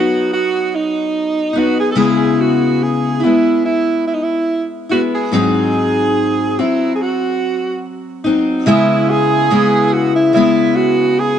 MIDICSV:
0, 0, Header, 1, 3, 480
1, 0, Start_track
1, 0, Key_signature, 4, "minor"
1, 0, Tempo, 835655
1, 1132, Time_signature, 4, 2, 24, 8
1, 6542, End_track
2, 0, Start_track
2, 0, Title_t, "Alto saxophone"
2, 0, Program_c, 0, 65
2, 0, Note_on_c, 0, 66, 95
2, 163, Note_off_c, 0, 66, 0
2, 191, Note_on_c, 0, 66, 101
2, 432, Note_on_c, 0, 63, 90
2, 440, Note_off_c, 0, 66, 0
2, 910, Note_on_c, 0, 66, 91
2, 919, Note_off_c, 0, 63, 0
2, 1028, Note_off_c, 0, 66, 0
2, 1031, Note_on_c, 0, 68, 84
2, 1094, Note_off_c, 0, 68, 0
2, 1099, Note_on_c, 0, 69, 69
2, 1139, Note_on_c, 0, 68, 96
2, 1147, Note_off_c, 0, 69, 0
2, 1382, Note_on_c, 0, 66, 82
2, 1390, Note_off_c, 0, 68, 0
2, 1625, Note_on_c, 0, 68, 85
2, 1633, Note_off_c, 0, 66, 0
2, 1861, Note_on_c, 0, 64, 87
2, 1870, Note_off_c, 0, 68, 0
2, 2093, Note_off_c, 0, 64, 0
2, 2097, Note_on_c, 0, 64, 83
2, 2318, Note_off_c, 0, 64, 0
2, 2340, Note_on_c, 0, 64, 72
2, 2377, Note_on_c, 0, 63, 67
2, 2386, Note_off_c, 0, 64, 0
2, 2430, Note_on_c, 0, 64, 73
2, 2439, Note_off_c, 0, 63, 0
2, 2671, Note_off_c, 0, 64, 0
2, 2822, Note_on_c, 0, 66, 83
2, 2879, Note_off_c, 0, 66, 0
2, 2955, Note_on_c, 0, 68, 80
2, 3051, Note_off_c, 0, 68, 0
2, 3070, Note_on_c, 0, 68, 94
2, 3789, Note_on_c, 0, 64, 81
2, 3798, Note_off_c, 0, 68, 0
2, 3986, Note_off_c, 0, 64, 0
2, 3995, Note_on_c, 0, 68, 60
2, 4028, Note_on_c, 0, 66, 85
2, 4037, Note_off_c, 0, 68, 0
2, 4502, Note_off_c, 0, 66, 0
2, 4978, Note_on_c, 0, 64, 95
2, 5227, Note_on_c, 0, 68, 100
2, 5236, Note_off_c, 0, 64, 0
2, 5704, Note_on_c, 0, 66, 88
2, 5713, Note_off_c, 0, 68, 0
2, 5830, Note_off_c, 0, 66, 0
2, 5833, Note_on_c, 0, 64, 89
2, 5931, Note_off_c, 0, 64, 0
2, 5940, Note_on_c, 0, 64, 94
2, 6179, Note_on_c, 0, 66, 94
2, 6188, Note_off_c, 0, 64, 0
2, 6428, Note_on_c, 0, 68, 103
2, 6437, Note_off_c, 0, 66, 0
2, 6542, Note_off_c, 0, 68, 0
2, 6542, End_track
3, 0, Start_track
3, 0, Title_t, "Steel-string acoustic guitar"
3, 0, Program_c, 1, 25
3, 0, Note_on_c, 1, 54, 43
3, 0, Note_on_c, 1, 59, 48
3, 0, Note_on_c, 1, 63, 56
3, 873, Note_off_c, 1, 63, 0
3, 879, Note_on_c, 1, 63, 49
3, 888, Note_off_c, 1, 54, 0
3, 891, Note_off_c, 1, 59, 0
3, 893, Note_on_c, 1, 59, 50
3, 895, Note_on_c, 1, 54, 40
3, 1122, Note_off_c, 1, 54, 0
3, 1122, Note_off_c, 1, 59, 0
3, 1122, Note_on_c, 1, 49, 69
3, 1124, Note_on_c, 1, 56, 73
3, 1126, Note_off_c, 1, 63, 0
3, 1129, Note_on_c, 1, 59, 72
3, 1131, Note_on_c, 1, 64, 84
3, 1831, Note_off_c, 1, 64, 0
3, 1838, Note_on_c, 1, 64, 52
3, 1847, Note_off_c, 1, 49, 0
3, 1851, Note_off_c, 1, 59, 0
3, 1860, Note_on_c, 1, 59, 46
3, 1872, Note_off_c, 1, 56, 0
3, 1874, Note_on_c, 1, 56, 42
3, 2804, Note_off_c, 1, 64, 0
3, 2811, Note_on_c, 1, 64, 47
3, 2817, Note_off_c, 1, 59, 0
3, 2823, Note_on_c, 1, 59, 45
3, 2825, Note_off_c, 1, 56, 0
3, 2827, Note_on_c, 1, 56, 42
3, 3053, Note_off_c, 1, 64, 0
3, 3053, Note_on_c, 1, 44, 62
3, 3056, Note_off_c, 1, 56, 0
3, 3058, Note_off_c, 1, 59, 0
3, 3058, Note_on_c, 1, 54, 71
3, 3061, Note_on_c, 1, 60, 74
3, 3064, Note_on_c, 1, 63, 86
3, 3774, Note_off_c, 1, 44, 0
3, 3777, Note_off_c, 1, 54, 0
3, 3778, Note_off_c, 1, 60, 0
3, 3780, Note_off_c, 1, 63, 0
3, 3784, Note_on_c, 1, 60, 50
3, 3797, Note_on_c, 1, 54, 39
3, 4733, Note_on_c, 1, 63, 58
3, 4738, Note_off_c, 1, 60, 0
3, 4741, Note_off_c, 1, 54, 0
3, 4745, Note_on_c, 1, 60, 51
3, 4748, Note_on_c, 1, 54, 42
3, 4973, Note_on_c, 1, 49, 81
3, 4974, Note_off_c, 1, 63, 0
3, 4976, Note_off_c, 1, 54, 0
3, 4978, Note_on_c, 1, 56, 85
3, 4980, Note_off_c, 1, 60, 0
3, 4985, Note_on_c, 1, 59, 78
3, 4988, Note_on_c, 1, 64, 84
3, 5453, Note_off_c, 1, 49, 0
3, 5456, Note_off_c, 1, 56, 0
3, 5460, Note_off_c, 1, 59, 0
3, 5460, Note_on_c, 1, 49, 62
3, 5464, Note_on_c, 1, 56, 62
3, 5469, Note_on_c, 1, 59, 60
3, 5474, Note_off_c, 1, 64, 0
3, 5476, Note_on_c, 1, 64, 64
3, 5926, Note_off_c, 1, 49, 0
3, 5933, Note_on_c, 1, 49, 64
3, 5939, Note_off_c, 1, 56, 0
3, 5942, Note_off_c, 1, 59, 0
3, 5947, Note_on_c, 1, 56, 59
3, 5955, Note_on_c, 1, 59, 68
3, 5962, Note_off_c, 1, 64, 0
3, 5964, Note_on_c, 1, 64, 61
3, 6542, Note_off_c, 1, 49, 0
3, 6542, Note_off_c, 1, 56, 0
3, 6542, Note_off_c, 1, 59, 0
3, 6542, Note_off_c, 1, 64, 0
3, 6542, End_track
0, 0, End_of_file